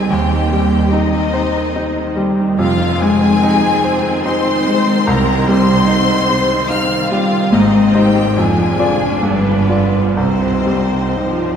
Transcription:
Already playing: grand piano G3 D#4 C5, viola section C4
0.08 double bass section D#2, cello section D#2, grand piano D#2, viola section C3, violin section G4 G5
0.30 viola section D#3
0.50 viola section C3, grand piano G3
0.70 viola section D#3
0.91 viola section C3, grand piano D#4, violin section D#4 D#5
1.12 viola section D#3
1.33 viola section C3, grand piano C5
1.55 viola section D#3
1.75 viola section C3, grand piano D#4
1.97 viola section D#3
2.16 viola section C3, grand piano G3
2.39 viola section D#3
2.59 double bass section F1, cello section F2, grand piano F2, viola section C3 C4, violin section F4 F5
2.81 viola section D#3
2.99 viola section C3, grand piano G#3, violin section G#4 G#5
3.21 viola section D#3
3.42 viola section C3, grand piano D#4
3.64 viola section D#3
3.83 viola section C3, grand piano C5
4.04 viola section D#3
4.23 viola section C3, grand piano D#4, violin section C5 C6
4.45 viola section D#3
4.67 viola section C3, grand piano G#3
4.87 viola section D#3
5.06 double bass section C2, grand piano C2, viola section C3, cello section C3, violin section A#4 A#5
5.28 viola section D#3
5.47 viola section C3, grand piano G3, violin section C5 C6
5.68 viola section D#3
5.88 viola section C3, grand piano D#4
6.10 viola section D#3
6.29 viola section C3, grand piano C5
6.50 viola section D#3
6.69 viola section C3, grand piano D#4, violin section F5 F6
6.91 viola section D#3
7.10 viola section C3, grand piano G3, violin section F4 F5
7.32 viola section D#3
7.52 double bass section G#1, cello section G#2, grand piano G#2, viola section C3 C4, violin section D#4 D#5
7.73 viola section D#3
7.94 viola section C3, grand piano D#4 C5, violin section G4 G5
8.15 viola section D#3
8.35 double bass section F1, cello section F2, grand piano F2, viola section D3 D4, violin section G#4 G#5
8.57 viola section F3
8.79 viola section D3, grand piano F4 D5
9.03 viola section F3
9.22 double bass section G1, grand piano G2, cello section G2, viola section D3, violin section B3 B4
9.47 viola section F3
9.70 viola section D3, grand piano F4 D5
9.96 viola section F3
10.16 grand piano C2, double bass section C2, cello section C3, violin section C4 C5
10.20 viola section C3 C4
10.46 viola section D#3
10.66 viola section C3, grand piano G3
10.95 viola section D#3
11.17 viola section F3, grand piano D#4

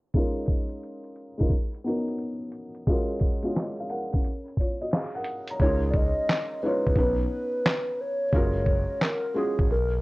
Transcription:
0.14 felt piano G#3 C#4 D#4 F4 A#4, kick, closed hi-hat
0.46 kick, closed hi-hat
0.69 closed hi-hat
0.83 closed hi-hat
1.04 closed hi-hat
1.16 closed hi-hat
1.38 felt piano G#3 C#4 D#4 F4 A#4, kick, closed hi-hat
1.50 kick, closed hi-hat
1.74 closed hi-hat
1.84 felt piano B3 C#4 D#4 F#4 A#4, closed hi-hat
2.08 closed hi-hat
2.18 closed hi-hat
2.52 closed hi-hat
2.75 closed hi-hat
2.87 felt piano G#3 C#4 F4 F#4 A#4, kick, closed hi-hat
3.19 kick, closed hi-hat
3.42 felt piano G#3 C#4 F4 F#4 G#4, closed hi-hat
3.56 felt piano F#4 D#5, snare, clap, closed hi-hat
3.77 felt piano G#4 F5, closed hi-hat
3.89 felt piano A#4 F#5, closed hi-hat
4.12 felt piano C#4 A#4, kick, closed hi-hat
4.24 closed hi-hat
4.48 closed hi-hat
4.57 felt piano F4 C#5, kick, closed hi-hat
4.81 felt piano F#4 D#5, closed hi-hat
4.91 felt piano G#4 F5, snare, clap, closed hi-hat
5.15 felt piano A#4 F#5
5.24 closed hi-hat
5.48 felt piano C#5 A#5, closed hi-hat
5.60 analog synth bass C#2, felt piano G#3 C#4 D#4 F4, soft synth lead C#5, kick
5.64 felt piano A#4
5.91 soft synth lead D5, kick
5.96 soft synth lead D#5
6.29 snare, clap
6.63 felt piano G#3 C#4 D#4 F4 C#5, soft synth lead B4
6.87 analog synth bass C#2, kick
6.95 analog synth bass B1, felt piano B3 C#4 D#4 F#4 B4, kick
7.66 snare, clap
8.01 soft synth lead C#5
8.32 analog synth bass F#1, felt piano G#3 C#4 F4 F#4 A#4, kick
8.66 kick
9.02 soft synth lead A#4, snare, clap
9.34 felt piano G#3 C#4 F4 F#4 G#4, soft synth lead G#4
9.59 analog synth bass G#1, kick
9.70 analog synth bass B1, soft synth lead A#4

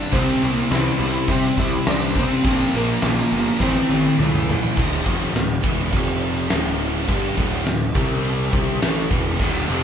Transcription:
Already playing: distorted electric guitar G2 D3 G3, lead electric guitar D4, steel pan D5
0.12 picked electric bass C2, overdriven electric guitar C3 G3 C4, distorted electric guitar C3 G3 C4, lead electric guitar C4, steel pan C5, kick, crash
0.42 picked electric bass C2, distorted electric guitar C3 G3 C4, crash
0.55 lead electric guitar A#3
0.71 picked electric bass C2, distorted electric guitar C3 G3 C4, lead electric guitar E4, steel pan E5, snare, crash
0.99 picked electric bass C2, distorted electric guitar C3 G3 C4, crash
1.27 distorted electric guitar C3 G3 C4, picked electric bass C3, lead electric guitar C4, steel pan C5, kick, crash
1.57 picked electric bass C2, distorted electric guitar C3 G3 C4, lead electric guitar E4, steel pan E5, kick, snare, crash
1.87 picked electric bass C2, distorted electric guitar C3 G3 C4, lead electric guitar D4, steel pan D5, snare, crash
2.15 distorted electric guitar C3 G3 C4, overdriven electric guitar C3 G3 C4, lead electric guitar C4, steel pan C5, kick, crash
2.44 picked electric bass A#1, overdriven electric guitar A#2 F3 A#3, distorted electric guitar A#2 F3 A#3, kick, crash
2.74 picked electric bass A#1, distorted electric guitar A#2 F3 A#3, lead electric guitar A#3, steel pan A#4, crash
3.02 picked electric bass A#1, distorted electric guitar A#2 F3 A#3, snare, crash
3.31 picked electric bass G1, distorted electric guitar A#2 F3 A#3, crash
3.59 picked electric bass A1, overdriven electric guitar A2 E3, distorted electric guitar A2 E3 A3, lead electric guitar C4, kick, snare
3.63 overdriven electric guitar A3, steel pan C5
3.76 snare
3.89 picked electric bass A1, distorted electric guitar A2 E3 A3, high tom
4.05 high tom
4.19 picked electric bass C#2, distorted electric guitar A2 E3 A3, mid tom
4.34 mid tom
4.49 distorted electric guitar A2 E3 A3, floor tom
4.63 floor tom
4.76 picked electric bass D1, overdriven electric guitar D2 A2 D3, kick, crash
4.94 snare
5.06 picked electric bass F1, overdriven electric guitar F2 C3 F3, kick, crash
5.22 snare
5.34 picked electric bass D1, overdriven electric guitar D2 A2, snare, crash
5.64 picked electric bass E1, overdriven electric guitar E2 B2 E3, kick, crash
5.93 picked electric bass F1, overdriven electric guitar F2 C3 F3, kick, crash
6.22 crash
6.50 picked electric bass D1, overdriven electric guitar D2 A2 D3, snare, crash
6.80 crash
7.07 picked electric bass G1, overdriven electric guitar G2 D3 G3, kick, crash
7.36 picked electric bass D1, overdriven electric guitar D2 A2 D3, kick, crash
7.66 picked electric bass D1, overdriven electric guitar D2 A2, snare, crash
7.94 picked electric bass C2, overdriven electric guitar C3 G3 C4, kick, crash
8.25 crash
8.53 picked electric bass C2, overdriven electric guitar C3 G3 C4, kick, crash
8.81 picked electric bass A1, overdriven electric guitar A2 E3 A3, snare, crash
9.11 picked electric bass E1, overdriven electric guitar E2 B2 E3, kick, crash
9.39 picked electric bass D1, overdriven electric guitar D2 A2 D3, distorted electric guitar D2 A2 D3, kick, crash
9.68 picked electric bass F1, overdriven electric guitar F2 C3 F3, distorted electric guitar F2 C3 F3, crash

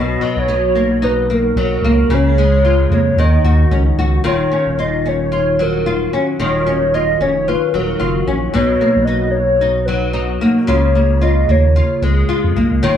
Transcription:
Already playing: sub bass B1, nylon-string guitar B2 F#3, soft synth lead D#5
0.21 nylon-string guitar F#3
0.36 sub bass B1, soft synth lead C#5
0.48 nylon-string guitar D#4
0.75 nylon-string guitar A#3
1.02 nylon-string guitar D#4, soft synth lead B4
1.30 nylon-string guitar A#3
1.34 soft synth lead A#4
1.56 sub bass B1, nylon-string guitar F#3, soft synth lead A#4
1.82 sub bass C#2, nylon-string guitar A#3
2.09 sub bass C#2, nylon-string guitar C#3
2.14 soft synth lead C#5
2.38 nylon-string guitar G#3
2.65 nylon-string guitar F4
2.90 sub bass F2, nylon-string guitar A#3
2.94 soft synth lead C#5
3.17 sub bass D#2, nylon-string guitar D#3, soft synth lead D#5
3.44 sub bass D#2, nylon-string guitar F#4
3.71 sub bass C#2, nylon-string guitar C#4
3.98 sub bass C#2, nylon-string guitar F#4
4.24 sub bass D#1, nylon-string guitar D#3 F4, soft synth lead C#5
4.52 nylon-string guitar C#4
4.66 sub bass D#1
4.79 nylon-string guitar F4, soft synth lead D#5
5.06 nylon-string guitar C#4, soft synth lead C#5
5.32 nylon-string guitar F4
5.59 nylon-string guitar F#3, soft synth lead A#4
5.86 nylon-string guitar F4
6.13 nylon-string guitar C#4
6.39 sub bass D#1, nylon-string guitar D#3 F4, soft synth lead C#5
6.66 nylon-string guitar C#4
6.94 nylon-string guitar F4, soft synth lead D#5
7.20 sub bass F1, nylon-string guitar C#4, soft synth lead C#5
7.48 nylon-string guitar F4, soft synth lead B4
7.73 sub bass D#1, nylon-string guitar F#3
7.78 soft synth lead A#4
8.00 sub bass F#1, nylon-string guitar F4
8.27 sub bass A#1, nylon-string guitar C#4
8.54 sub bass B1, nylon-string guitar B2 D#4, soft synth lead C#5
8.81 nylon-string guitar A#3
8.96 sub bass B1
9.05 nylon-string guitar D#4, soft synth lead D#5
9.31 soft synth lead C#5
9.61 nylon-string guitar D#4
9.85 nylon-string guitar F#3, soft synth lead B4
10.13 nylon-string guitar D#4
10.41 nylon-string guitar A#3
10.67 sub bass C#2, nylon-string guitar C#3 F4, soft synth lead C#5
10.95 nylon-string guitar A#3
11.21 nylon-string guitar F4, soft synth lead D#5
11.48 sub bass D#2, nylon-string guitar A#3, soft synth lead C#5
11.76 nylon-string guitar F4
12.02 sub bass C#2, nylon-string guitar G#3, soft synth lead G#4
12.29 nylon-string guitar F4
12.44 sub bass F2
12.56 sub bass B1, nylon-string guitar A#3
12.71 sub bass C#2
12.82 sub bass D#1, nylon-string guitar D#3 F4, soft synth lead C#5

